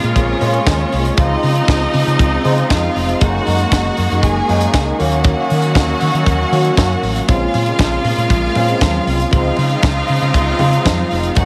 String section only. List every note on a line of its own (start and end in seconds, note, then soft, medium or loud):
0.00 1.16 C#3 medium
0.00 1.16 G#3 medium
0.00 1.16 A#3 medium
0.00 1.16 F4 loud
1.19 3.20 C#3 medium
1.19 3.20 F3 medium
1.19 3.20 C4 medium
1.19 3.20 D#4 loud
3.22 7.25 D#3 medium
3.22 4.98 G#3 medium
3.22 4.98 A#3 medium
3.22 4.98 F#4 medium
4.99 7.26 F#3 medium
4.99 7.26 C#4 medium
4.99 7.26 F#4 medium
7.29 9.31 C#3 medium
7.29 9.31 G#3 medium
7.29 9.31 A#3 medium
7.29 9.31 F4 loud
9.32 11.35 C#3 medium
9.32 11.35 F3 medium
9.32 11.35 C4 medium
9.32 11.35 D#4 loud
11.39 11.45 D#3 medium
11.39 11.45 G#3 medium
11.39 11.45 A#3 medium
11.39 11.45 F#4 loud